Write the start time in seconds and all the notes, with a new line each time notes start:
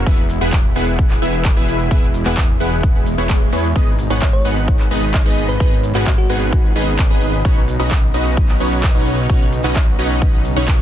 0.06 E1 B2 E3 G#3 B3 E4 G#4 B4 E5, kick, closed hi-hat, shaker
0.18 closed hi-hat
0.30 open hi-hat, shaker
0.41 E1 B3 E4 G#4 B4 F#5, closed hi-hat, shaker
0.53 kick, clap, closed hi-hat, shaker
0.64 closed hi-hat
0.76 E1 B3 E4 G#4 B4 F#5, open hi-hat, shaker
0.87 closed hi-hat, shaker
0.99 kick, closed hi-hat, shaker
1.10 clap, closed hi-hat
1.22 E1 B3 E4 G#4 B4 E5, open hi-hat, shaker
1.33 closed hi-hat, shaker
1.45 kick, clap, closed hi-hat, shaker
1.56 E1 B3 E4 G#4 B4 E5, closed hi-hat
1.68 open hi-hat, shaker
1.80 closed hi-hat, shaker
1.91 E1 B3 E4 G#4 B4 E5, kick, closed hi-hat, shaker
2.03 open hi-hat
2.14 open hi-hat, shaker
2.26 E1 B3 E4 G#4 B4 F#5, clap, closed hi-hat, shaker
2.37 kick, clap, closed hi-hat, shaker
2.49 closed hi-hat
2.60 E1 B3 E4 G#4 B4 F#5, open hi-hat, shaker
2.72 closed hi-hat, shaker
2.83 kick, closed hi-hat, swell, shaker
2.95 closed hi-hat
3.06 open hi-hat, shaker
3.18 E1 B3 E4 G#4 B4 C#5, closed hi-hat, shaker
3.30 kick, clap, closed hi-hat, shaker
3.41 closed hi-hat
3.53 E2 B3 E4 G#4 B4 C#5, open hi-hat, shaker
3.64 closed hi-hat, shaker
3.76 G#1 D#3 B3 D#4 G#4 B4 D#5, kick, closed hi-hat, shaker
3.87 closed hi-hat
3.99 open hi-hat, shaker
4.10 G#1 B3 D#4 G#4 B4 C#5 F#5, closed hi-hat, shaker
4.22 kick, clap, closed hi-hat, shaker
4.33 C#5, closed hi-hat
4.45 G#1 B3 D#4 G#4 B4 F#5, open hi-hat, shaker
4.56 closed hi-hat, shaker
4.68 kick, closed hi-hat, shaker
4.80 clap, closed hi-hat
4.91 G#1 B3 D#4 G#4 B4 D#5, open hi-hat, shaker
5.03 closed hi-hat, shaker
5.14 kick, clap, closed hi-hat, shaker
5.26 G#1 B3 D#4 G#4 B4 D#5, closed hi-hat
5.37 open hi-hat, shaker
5.49 B4, closed hi-hat, shaker
5.60 G#1 B3 C#4 D#4 G#4 B4 D#5, kick, closed hi-hat, shaker
5.72 closed hi-hat
5.83 open hi-hat, shaker
5.95 G#1 B3 D#4 F#4 G#4 B4 F#5, clap, closed hi-hat, shaker
6.06 kick, clap, closed hi-hat, shaker
6.18 F#4, closed hi-hat
6.30 G#1 B3 D#4 G#4 B4 F#5, open hi-hat, shaker
6.41 closed hi-hat, shaker
6.53 kick, closed hi-hat, shaker
6.64 closed hi-hat
6.76 G#1 B3 D#4 G#4 B4 D#5, open hi-hat, shaker
6.87 closed hi-hat, shaker
6.99 kick, clap, closed hi-hat, shaker
7.10 G#1 B3 D#4 G#4 B4 D#5, closed hi-hat
7.22 open hi-hat, shaker
7.34 closed hi-hat, shaker
7.45 B1 C#3 F#3 B3 C#4 D#4 F#4 B4 C#5, kick, closed hi-hat, shaker
7.57 closed hi-hat
7.68 open hi-hat, shaker
7.80 B1 C#4 D#4 F#4 B4 D#5, closed hi-hat, shaker
7.91 kick, clap, closed hi-hat, shaker
8.03 closed hi-hat
8.14 B1 C#4 D#4 F#4 B4 D#5, open hi-hat, shaker
8.26 closed hi-hat, shaker
8.37 kick, closed hi-hat, shaker
8.49 clap, closed hi-hat
8.60 B1 C#4 D#4 F#4 B4 C#5, open hi-hat, shaker
8.72 closed hi-hat, shaker
8.83 kick, clap, closed hi-hat, shaker
8.95 B1 C#4 D#4 F#4 B4 C#5, closed hi-hat
9.07 open hi-hat, shaker
9.18 closed hi-hat, shaker
9.29 B1 C#4 D#4 F#4 B4 C#5, kick, closed hi-hat, shaker
9.41 closed hi-hat
9.53 open hi-hat, shaker
9.64 B1 C#4 D#4 F#4 B4 D#5, clap, closed hi-hat, shaker
9.76 kick, clap, closed hi-hat, shaker
9.87 closed hi-hat
9.99 B1 C#4 D#4 F#4 B4 D#5, open hi-hat, shaker
10.10 closed hi-hat, shaker
10.22 kick, closed hi-hat, shaker
10.33 closed hi-hat
10.45 open hi-hat, shaker
10.56 B1 C#4 D#4 F#4 B4 C#5, closed hi-hat, shaker
10.68 kick, clap, closed hi-hat, shaker